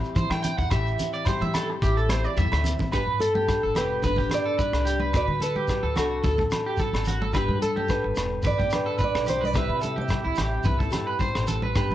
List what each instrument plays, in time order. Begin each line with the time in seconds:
Already playing: nylon-string guitar E3 G3 C4 G4
0.04 shekere
0.16 upright bass E3, nylon-string guitar E4, clean electric guitar C5, muted nylon-string guitar stroke, kick, shekere
0.30 upright bass E3, clean electric guitar G5, cross-stick, high conga, low agogo, shekere
0.43 nylon-string guitar C4, clean electric guitar G5, closed hi-hat, low conga, shekere
0.58 upright bass E2, clean electric guitar F#5, kick, shekere
0.70 upright bass A1, nylon-string guitar E3 G4, clean electric guitar E5, kick, cross-stick, low conga, low agogo, shekere
0.86 shekere
0.99 nylon-string guitar C4, closed hi-hat, low conga, shekere
1.13 clean electric guitar D5, shekere
1.25 nylon-string guitar G3 G4, clean electric guitar C5, kick, cross-stick, low agogo, shekere
1.41 upright bass E3, clean electric guitar E5, high conga, shekere
1.54 clean electric guitar A4, cross-stick, closed hi-hat, low conga, low agogo, shekere
1.70 muted clean electric guitar stroke
1.82 upright bass A1, nylon-string guitar E3, clean electric guitar G4, kick, shekere
1.97 clean electric guitar A4, shekere
2.09 nylon-string guitar C4, clean electric guitar C5, cross-stick, closed hi-hat, high conga, low agogo, shekere
2.24 clean electric guitar D5, shekere
2.36 upright bass E2, nylon-string guitar G3 E4, clean electric guitar E5, kick, shekere
2.52 upright bass D2, cross-stick, high conga, low agogo, shekere
2.64 nylon-string guitar C4, closed hi-hat, low conga, shekere
2.79 kick, low conga, shekere
2.91 upright bass G1, nylon-string guitar G2 D4, steel-string acoustic guitar G4, clean electric guitar B4, kick, cross-stick, low agogo, shekere
3.07 upright bass G2
3.20 steel-string acoustic guitar A4, clean electric guitar A4, closed hi-hat, high conga
3.35 clean electric guitar G4, high conga
3.47 nylon-string guitar G3 D4, kick, cross-stick, low agogo, shekere
3.63 upright bass G1, clean electric guitar A4
3.75 upright bass E1, nylon-string guitar B3, clean electric guitar G4, steel-string acoustic guitar B4, cross-stick, closed hi-hat, low conga, low agogo, shekere
4.02 upright bass G1, nylon-string guitar D3 D4, clean electric guitar B4, steel-string acoustic guitar B4, kick, low conga, shekere
4.16 clean electric guitar G4, kick, high conga
4.30 nylon-string guitar B4, cross-stick, closed hi-hat, low conga, low agogo, shekere
4.34 steel-string acoustic guitar D5
4.46 clean electric guitar A4
4.59 nylon-string guitar G3, clean electric guitar B4, kick, shekere
4.73 upright bass C2, cross-stick, low agogo
4.85 clean electric guitar G4, closed hi-hat, shekere
5.00 clean electric guitar B4, high conga
5.13 upright bass D2, nylon-string guitar F#4, clean electric guitar B4, steel-string acoustic guitar D5, muted nylon-string guitar stroke, kick, cross-stick, low agogo, shekere
5.28 upright bass D3, high conga
5.40 clean electric guitar A4, steel-string acoustic guitar B4, closed hi-hat, high conga, shekere
5.56 clean electric guitar G4, high conga
5.68 nylon-string guitar F#3 A4, kick, cross-stick, low agogo, shekere
5.83 upright bass D2, clean electric guitar A4
5.96 upright bass C2, nylon-string guitar D4, clean electric guitar F#4, steel-string acoustic guitar A4, cross-stick, closed hi-hat, low conga, low agogo, shekere
6.23 upright bass D2, nylon-string guitar F#4, clean electric guitar A4, kick, low conga, shekere
6.38 kick, high conga
6.51 nylon-string guitar F#4, cross-stick, closed hi-hat, low conga, low agogo, shekere
6.66 clean electric guitar G4
6.77 nylon-string guitar F#3, clean electric guitar A4, kick, shekere
6.93 upright bass G#1, cross-stick, low agogo
7.05 clean electric guitar F#4, closed hi-hat, low conga, shekere
7.22 clean electric guitar A4, high conga
7.33 upright bass G1, nylon-string guitar G2 D4, steel-string acoustic guitar G4, clean electric guitar B4, kick, cross-stick, low agogo, shekere
7.48 upright bass G2, high conga
7.62 steel-string acoustic guitar A4, clean electric guitar A4, closed hi-hat, high conga
7.76 clean electric guitar G4, high conga
7.87 nylon-string guitar G3 D4, steel-string acoustic guitar B4, kick, cross-stick, low agogo, shekere
8.04 upright bass G1, muted clean electric guitar stroke
8.16 upright bass E1, nylon-string guitar B3, cross-stick, closed hi-hat, low agogo, shekere
8.42 upright bass G1, nylon-string guitar D3 D4, clean electric guitar B4, kick, low conga, shekere
8.47 steel-string acoustic guitar D5
8.58 clean electric guitar G4, kick, high conga
8.70 nylon-string guitar D4, cross-stick, closed hi-hat, low conga, low agogo, shekere
8.75 steel-string acoustic guitar B4
8.86 clean electric guitar A4
8.98 nylon-string guitar G3, clean electric guitar B4, kick, shekere
9.04 steel-string acoustic guitar D5
9.15 upright bass B1, cross-stick, low agogo
9.26 clean electric guitar G4, steel-string acoustic guitar C5, closed hi-hat, low conga, shekere
9.41 clean electric guitar B4, steel-string acoustic guitar D5, high conga
9.54 upright bass C2, nylon-string guitar C3 G3 C4 E4, clean electric guitar B4, steel-string acoustic guitar E5, kick, cross-stick, low agogo, shekere
9.58 nylon-string guitar G4
9.69 upright bass C3
9.81 clean electric guitar A4, closed hi-hat, high conga, shekere
9.96 clean electric guitar G4, high conga
10.01 steel-string acoustic guitar E5
10.09 nylon-string guitar G3 G4, kick, cross-stick, low agogo, shekere
10.24 upright bass C2, clean electric guitar E4
10.35 upright bass A1, nylon-string guitar C4, clean electric guitar G4, cross-stick, closed hi-hat, low conga, low agogo, shekere
10.64 upright bass C2, nylon-string guitar G2 E4, clean electric guitar B4, kick, low conga, shekere
10.79 clean electric guitar A4, kick, high conga
10.91 nylon-string guitar G4, cross-stick, closed hi-hat, low conga, low agogo, shekere
11.07 clean electric guitar B4
11.19 nylon-string guitar G3, clean electric guitar C5, kick, shekere
11.35 upright bass A1, cross-stick, low agogo
11.47 clean electric guitar A4, closed hi-hat, low conga, shekere
11.62 clean electric guitar B4, high conga
11.76 upright bass G1, nylon-string guitar G2 D4, steel-string acoustic guitar G4, clean electric guitar B4, kick, cross-stick, low agogo, shekere
11.91 upright bass G2, high conga